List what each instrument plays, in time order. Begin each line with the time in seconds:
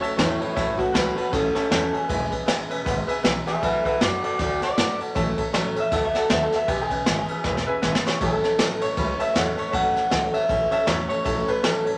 0.01 steel-string acoustic guitar A3 C#4 F#4, upright piano C#5 E5 A5, muted upright bass stroke, ride
0.05 steel-string acoustic guitar F#3
0.17 upright bass E2, steel-string acoustic guitar A2 E3 F#3 A3 C#4 F#4, clean electric guitar E4 C#5, upright piano C#5 E5 A5, snare, ride
0.39 steel-string acoustic guitar F#3 A3 C#4 F#4, clean electric guitar E4 C#5, upright piano C#5 E5 A5, muted upright bass stroke, ride
0.55 steel-string acoustic guitar A2 E3 F#3 A3 C#4 F#4, clean electric guitar E4 C#5, upright piano C#5 E5 A5, kick, snare, ride
0.77 upright bass E2, steel-string acoustic guitar F#3 A3 C#4 F#4, clean electric guitar F#4 B4, upright piano C#5 E5 A5, kick, ride
0.93 upright bass C#2, steel-string acoustic guitar A2 E3 F#3 A3 C#4 F#4, clean electric guitar F#4 B4, upright piano C#5 E5 A5, snare, ride
1.16 steel-string acoustic guitar F#3 A3 C#4 F#4, clean electric guitar F#4 B4, upright piano C#5 E5 A5, muted upright bass stroke, ride
1.32 upright bass A1, steel-string acoustic guitar F#3 A3 C#4 F#4, clean electric guitar C#4 A4, upright piano C#5 E5 A5, kick, snare, ride
1.54 steel-string acoustic guitar F#3 A3 C#4 F#4, clean electric guitar C#4 A4, upright piano C#5 E5 A5, muted upright bass stroke, snare, ride
1.70 upright bass E2, steel-string acoustic guitar A2 E3 F#3 A3 C#4 F#4, clean electric guitar C#4 A4, upright piano C#5 E5 A5, snare, ride
1.92 steel-string acoustic guitar F#3 A3 C#4 F#4, clean electric guitar G#4, upright piano C#5 E5 A5, ride
2.08 upright bass E1, steel-string acoustic guitar E3 G#3 B3 C#4 G#4, upright piano B4 E5 G#5, kick, ride
2.30 steel-string acoustic guitar B3 C#4 G#4, upright piano B4 E5 G#5, kick, ride
2.46 upright bass A1, steel-string acoustic guitar E3 G#3 B3 C#4 G#4, upright piano B4 E5 G#5, snare, ride
2.68 upright bass E1, steel-string acoustic guitar B3 C#4 G#4, upright piano B4 E5 G#5, ride
2.85 upright bass G#1, steel-string acoustic guitar G#3 B3 C#4 G#4, upright piano B4 E5 F#5, kick, snare, ride
3.07 steel-string acoustic guitar B3 C#4 G#4, upright piano B4 E5 G#5, muted upright bass stroke, ride
3.23 upright bass B1, steel-string acoustic guitar E3 G#3 B3 C#4 G#4, upright piano B4 E5 G#5, snare, ride
3.46 steel-string acoustic guitar B3 C#4 G#4, clean electric guitar G#4 E5, upright piano B4 E5 G#5, snare, ride
3.61 upright bass D2, steel-string acoustic guitar D3 F#3 B3 F#4 A4, clean electric guitar B4 E5, upright piano D5 F#5 A5, kick, ride
3.84 upright bass A2, steel-string acoustic guitar B3 F#4 A4, clean electric guitar B4 E5, upright piano D5 F#5 A5, kick, ride
4.00 upright bass F#2, steel-string acoustic guitar D3 F#3 B3 F#4 A4, clean electric guitar F#4 D5, upright piano D5 F#5 A5, snare, ride
4.23 steel-string acoustic guitar B3 F#4 A4, clean electric guitar F#4 D5, upright piano D5 F#5 A5, ride
4.38 upright bass D2, steel-string acoustic guitar F#3 B3 F#4 A4, clean electric guitar F#4 D5, upright piano D5 F#5 A5, kick, snare, ride
4.60 steel-string acoustic guitar B3 F#4 A4, upright piano D5 F#5 A5, clean electric guitar D5, muted upright bass stroke, snare, ride
4.77 upright bass A2, steel-string acoustic guitar D3 F#3 B3 F#4 A4, upright piano D5 F#5 A5, snare, ride
4.99 steel-string acoustic guitar B3 F#4 A4, upright piano D5 F#5 A5, muted upright bass stroke, ride
5.15 upright bass A1, steel-string acoustic guitar A2 E3 F#3 A3 C#4 A4, upright piano C#5 E5 A5, kick, ride
5.37 steel-string acoustic guitar F#3 A3 C#4 A4, upright piano C#5 E5 A5, kick, ride
5.53 upright bass D2, steel-string acoustic guitar A2 E3 F#3 A3 C#4 A4, upright piano C#5 E5 A5, snare, ride
5.76 upright bass E2, steel-string acoustic guitar F#3 A3 C#4 A4, upright piano C#5 E5 A5, ride
5.80 clean electric guitar E5
5.91 upright bass D2, steel-string acoustic guitar F#3 B3 F#4 A4, clean electric guitar A4, upright piano D5 F#5 A5, kick, snare, ride
6.05 clean electric guitar E5
6.13 steel-string acoustic guitar B3 F#4 A4, upright piano D5 F#5 A5, muted upright bass stroke, snare, ride
6.18 clean electric guitar A4
6.29 upright bass D#2, steel-string acoustic guitar D3 F#3 B3 F#4 A4, upright piano D5 F#5 A5, clean electric guitar E5, snare, ride
6.43 clean electric guitar A4
6.51 steel-string acoustic guitar B3 F#4 A4, upright piano D5 F#5 A5, muted upright bass stroke, snare, ride
6.56 clean electric guitar E5
6.67 upright bass E1, steel-string acoustic guitar E3 G#3 B3 C#4 G#4, clean electric guitar G4, upright piano B4 E5 G#5, kick, ride
6.81 clean electric guitar G#4
6.89 upright bass B1, steel-string acoustic guitar B3 C#4 G#4, upright piano B4 E5 G#5, kick, ride
7.06 upright bass G#1, steel-string acoustic guitar E3 G#3 B3 C#4 G#4, upright piano B4 E5 G#5, snare, ride
7.28 steel-string acoustic guitar B3 C#4 G#4, upright piano B4 E5 G#5, muted upright bass stroke, ride
7.44 upright bass E1, steel-string acoustic guitar G#3 B3 C#4 G#4, upright piano B4 E5 G#5, kick, snare
7.57 snare
7.66 steel-string acoustic guitar B3 C#4 G#4, upright piano B4 E5 G#5, muted upright bass stroke
7.82 upright bass G#1, steel-string acoustic guitar E3 G#3 B3 C#4 G#4, upright piano B4 E5 G#5, snare
7.95 snare
8.04 steel-string acoustic guitar B3 C#4 G#4, upright piano B4 E5 G#5, clean electric guitar C#5, muted upright bass stroke, snare
8.21 upright bass A1, steel-string acoustic guitar A2 E3 F#3 A3 C#4 A4, clean electric guitar A4, upright piano C#5 E5 A5, kick, ride
8.42 steel-string acoustic guitar F#3 A3 C#4 A4, upright piano C#5 E5 A5, muted upright bass stroke, snare, ride
8.58 upright bass D2, steel-string acoustic guitar A2 E3 F#3 A3 C#4 A4, upright piano C#5 E5 A5, snare, ride
8.80 upright bass A1, steel-string acoustic guitar F#3 A3 C#4 A4, upright piano C#5 E5 A5, clean electric guitar C#5, ride
8.97 upright bass C#2, steel-string acoustic guitar F#3 A3 C#4 A4, upright piano C#5 E5 B5, kick, ride
9.18 steel-string acoustic guitar F#3 A3 C#4 A4, upright piano C#5 E5 A5, clean electric guitar E5, muted upright bass stroke, ride
9.34 upright bass E2, steel-string acoustic guitar A2 E3 F#3 A3 C#4 A4, upright piano C#5 E5 F#5, clean electric guitar C#5, snare, ride
9.56 steel-string acoustic guitar F#3 A3 C#4 A4, upright piano C#5 E5 A5, clean electric guitar C#5, ride
9.71 upright bass G2, steel-string acoustic guitar A2 E3 F#3 A3 C#4 A4, upright piano C#5 E5 A5, clean electric guitar F#5, kick, ride
9.94 upright bass E2, steel-string acoustic guitar F#3 A3 C#4 A4, upright piano C#5 E5 A5, snare, ride
10.10 upright bass C#2, steel-string acoustic guitar A2 E3 F#3 A3 C#4 A4, upright piano C#5 E5 A5, snare, ride
10.32 steel-string acoustic guitar F#3 A3 C#4 A4, upright piano C#5 E5 A5, clean electric guitar E5, muted upright bass stroke, ride
10.47 upright bass A1, steel-string acoustic guitar F#3 A3 C#4 A4, upright piano C#5 E5 A5, kick, ride
10.69 steel-string acoustic guitar F#3 A3 C#4 A4, upright piano C#5 E5 A5, clean electric guitar E5, muted upright bass stroke, ride
10.86 upright bass E2, steel-string acoustic guitar A2 E3 F#3 A3 C#4 A4, upright piano C#5 E5 A5, clean electric guitar C#5, snare, ride
11.08 steel-string acoustic guitar F#3 A3 C#4 A4, upright piano C#5 E5 A5, clean electric guitar C#5, muted upright bass stroke, ride
11.24 upright bass A1, steel-string acoustic guitar A2 E3 F#3 A3 C#4 A4, upright piano C#5 E5 A5, kick, ride
11.46 steel-string acoustic guitar F#3 A3 C#4 A4, clean electric guitar B4, upright piano C#5 E5 A5, muted upright bass stroke, ride
11.62 steel-string acoustic guitar A2 E3 F#3 A3 C#4 A4, clean electric guitar A4, upright piano C#5 E5 A5, snare, ride
11.85 upright bass A1, steel-string acoustic guitar F#3 A3 C#4 A4, upright piano C#5 E5 A5, ride